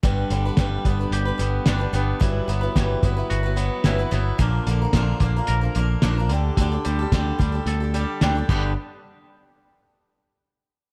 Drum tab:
CC |--------|--------|--------|-------x|
HH |xxxxxxxx|xxxxxxxx|xxxxxxxx|xxxxxxx-|
SD |--o---o-|--o---oo|--o---o-|--o---o-|
BD |o-oo----|o-oo----|o-oo----|o-oo---o|

CC |--------|
HH |--------|
SD |--------|
BD |--------|